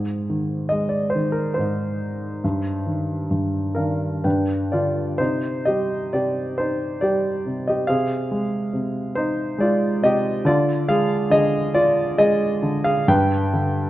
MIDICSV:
0, 0, Header, 1, 2, 480
1, 0, Start_track
1, 0, Key_signature, -3, "minor"
1, 0, Tempo, 862069
1, 1356, Time_signature, 3, 2, 24, 8
1, 1844, Tempo, 944882
1, 2804, Tempo, 904977
1, 3764, Tempo, 859599
1, 6164, Tempo, 887574
1, 7564, End_track
2, 0, Start_track
2, 0, Title_t, "Grand piano"
2, 0, Program_c, 0, 0
2, 0, Note_on_c, 0, 44, 51
2, 0, Note_on_c, 0, 60, 46
2, 0, Note_on_c, 0, 68, 69
2, 15, Control_c, 0, 64, 127
2, 165, Note_on_c, 0, 51, 43
2, 376, Note_off_c, 0, 60, 0
2, 384, Note_on_c, 0, 75, 76
2, 401, Note_on_c, 0, 56, 45
2, 418, Note_off_c, 0, 68, 0
2, 495, Note_on_c, 0, 74, 65
2, 513, Note_off_c, 0, 75, 0
2, 612, Note_on_c, 0, 72, 65
2, 629, Note_off_c, 0, 74, 0
2, 634, Note_off_c, 0, 51, 0
2, 642, Note_on_c, 0, 51, 46
2, 736, Note_on_c, 0, 70, 65
2, 747, Note_off_c, 0, 72, 0
2, 859, Note_on_c, 0, 72, 62
2, 870, Note_off_c, 0, 70, 0
2, 876, Note_off_c, 0, 44, 0
2, 876, Note_on_c, 0, 63, 44
2, 884, Note_on_c, 0, 44, 46
2, 1335, Note_off_c, 0, 56, 0
2, 1338, Note_off_c, 0, 51, 0
2, 1346, Note_off_c, 0, 44, 0
2, 1359, Note_on_c, 0, 43, 55
2, 1363, Control_c, 0, 64, 0
2, 1447, Control_c, 0, 64, 127
2, 1595, Note_on_c, 0, 51, 39
2, 1832, Note_off_c, 0, 43, 0
2, 1841, Note_on_c, 0, 43, 42
2, 2065, Note_on_c, 0, 70, 57
2, 2066, Note_off_c, 0, 51, 0
2, 2072, Note_on_c, 0, 77, 48
2, 2074, Note_on_c, 0, 51, 43
2, 2077, Note_on_c, 0, 62, 40
2, 2293, Note_off_c, 0, 72, 0
2, 2301, Note_off_c, 0, 63, 0
2, 2301, Note_off_c, 0, 77, 0
2, 2303, Note_off_c, 0, 62, 0
2, 2305, Note_off_c, 0, 43, 0
2, 2311, Note_off_c, 0, 51, 0
2, 2315, Note_on_c, 0, 71, 55
2, 2317, Note_on_c, 0, 79, 50
2, 2318, Note_on_c, 0, 43, 47
2, 2322, Note_off_c, 0, 70, 0
2, 2328, Control_c, 0, 64, 0
2, 2329, Note_on_c, 0, 62, 44
2, 2415, Control_c, 0, 64, 127
2, 2546, Note_off_c, 0, 79, 0
2, 2552, Note_off_c, 0, 62, 0
2, 2558, Note_on_c, 0, 74, 62
2, 2564, Note_on_c, 0, 77, 46
2, 2566, Note_on_c, 0, 50, 38
2, 2567, Note_on_c, 0, 65, 50
2, 2569, Note_off_c, 0, 71, 0
2, 2787, Note_off_c, 0, 77, 0
2, 2788, Note_off_c, 0, 43, 0
2, 2789, Note_off_c, 0, 65, 0
2, 2793, Note_on_c, 0, 72, 72
2, 2798, Note_off_c, 0, 50, 0
2, 2802, Note_on_c, 0, 48, 51
2, 2804, Note_on_c, 0, 63, 52
2, 2809, Note_off_c, 0, 74, 0
2, 2812, Control_c, 0, 64, 0
2, 2905, Control_c, 0, 64, 127
2, 3033, Note_off_c, 0, 63, 0
2, 3044, Note_on_c, 0, 75, 69
2, 3050, Note_on_c, 0, 55, 42
2, 3052, Note_off_c, 0, 72, 0
2, 3058, Note_on_c, 0, 67, 53
2, 3280, Note_off_c, 0, 67, 0
2, 3286, Note_off_c, 0, 48, 0
2, 3294, Note_on_c, 0, 48, 43
2, 3296, Note_on_c, 0, 74, 73
2, 3298, Note_off_c, 0, 75, 0
2, 3304, Note_on_c, 0, 67, 53
2, 3521, Note_off_c, 0, 67, 0
2, 3534, Note_on_c, 0, 72, 69
2, 3541, Note_off_c, 0, 74, 0
2, 3544, Note_on_c, 0, 63, 47
2, 3755, Note_off_c, 0, 63, 0
2, 3762, Note_off_c, 0, 55, 0
2, 3764, Note_on_c, 0, 74, 71
2, 3770, Note_on_c, 0, 55, 49
2, 3774, Note_off_c, 0, 72, 0
2, 3777, Note_on_c, 0, 67, 52
2, 4004, Note_off_c, 0, 48, 0
2, 4012, Note_on_c, 0, 48, 47
2, 4111, Note_off_c, 0, 67, 0
2, 4135, Note_on_c, 0, 75, 65
2, 4138, Note_off_c, 0, 74, 0
2, 4146, Note_on_c, 0, 67, 53
2, 4235, Note_off_c, 0, 55, 0
2, 4243, Note_off_c, 0, 48, 0
2, 4245, Note_on_c, 0, 77, 82
2, 4249, Note_off_c, 0, 67, 0
2, 4252, Note_on_c, 0, 48, 66
2, 4254, Note_off_c, 0, 75, 0
2, 4254, Control_c, 0, 64, 0
2, 4259, Note_on_c, 0, 68, 67
2, 4336, Control_c, 0, 64, 127
2, 4491, Note_on_c, 0, 56, 51
2, 4716, Note_off_c, 0, 48, 0
2, 4724, Note_on_c, 0, 48, 48
2, 4949, Note_off_c, 0, 68, 0
2, 4961, Note_on_c, 0, 72, 73
2, 4970, Note_on_c, 0, 63, 55
2, 4986, Note_off_c, 0, 77, 0
2, 5191, Note_off_c, 0, 63, 0
2, 5192, Note_off_c, 0, 56, 0
2, 5201, Note_on_c, 0, 56, 54
2, 5210, Note_off_c, 0, 72, 0
2, 5212, Note_on_c, 0, 74, 79
2, 5220, Note_on_c, 0, 65, 62
2, 5436, Note_off_c, 0, 48, 0
2, 5436, Note_off_c, 0, 65, 0
2, 5445, Note_on_c, 0, 48, 46
2, 5452, Note_on_c, 0, 75, 88
2, 5455, Note_off_c, 0, 74, 0
2, 5461, Note_on_c, 0, 67, 67
2, 5669, Note_off_c, 0, 56, 0
2, 5678, Note_off_c, 0, 48, 0
2, 5678, Note_off_c, 0, 67, 0
2, 5683, Note_on_c, 0, 50, 70
2, 5692, Note_on_c, 0, 74, 92
2, 5693, Control_c, 0, 64, 0
2, 5696, Note_on_c, 0, 65, 69
2, 5697, Note_off_c, 0, 75, 0
2, 5805, Control_c, 0, 64, 127
2, 5915, Note_off_c, 0, 65, 0
2, 5927, Note_on_c, 0, 56, 53
2, 5927, Note_on_c, 0, 77, 90
2, 5934, Note_on_c, 0, 68, 73
2, 5936, Note_off_c, 0, 74, 0
2, 6148, Note_off_c, 0, 77, 0
2, 6151, Note_off_c, 0, 50, 0
2, 6152, Note_off_c, 0, 68, 0
2, 6160, Note_on_c, 0, 50, 55
2, 6167, Note_on_c, 0, 75, 100
2, 6174, Note_on_c, 0, 68, 76
2, 6386, Note_off_c, 0, 68, 0
2, 6399, Note_on_c, 0, 65, 68
2, 6399, Note_on_c, 0, 74, 95
2, 6405, Note_off_c, 0, 75, 0
2, 6619, Note_off_c, 0, 65, 0
2, 6626, Note_off_c, 0, 56, 0
2, 6634, Note_on_c, 0, 56, 56
2, 6637, Note_on_c, 0, 75, 96
2, 6639, Note_on_c, 0, 68, 75
2, 6643, Note_off_c, 0, 74, 0
2, 6868, Note_off_c, 0, 50, 0
2, 6876, Note_on_c, 0, 50, 53
2, 6979, Note_off_c, 0, 68, 0
2, 6994, Note_on_c, 0, 77, 85
2, 6997, Note_on_c, 0, 68, 65
2, 7010, Note_off_c, 0, 75, 0
2, 7106, Note_off_c, 0, 56, 0
2, 7112, Note_off_c, 0, 68, 0
2, 7113, Note_off_c, 0, 50, 0
2, 7121, Note_on_c, 0, 43, 69
2, 7122, Note_off_c, 0, 77, 0
2, 7123, Note_on_c, 0, 79, 97
2, 7125, Note_on_c, 0, 71, 70
2, 7128, Control_c, 0, 64, 0
2, 7231, Control_c, 0, 64, 127
2, 7367, Note_on_c, 0, 50, 51
2, 7564, Note_off_c, 0, 43, 0
2, 7564, Note_off_c, 0, 50, 0
2, 7564, Note_off_c, 0, 71, 0
2, 7564, Note_off_c, 0, 79, 0
2, 7564, End_track
0, 0, End_of_file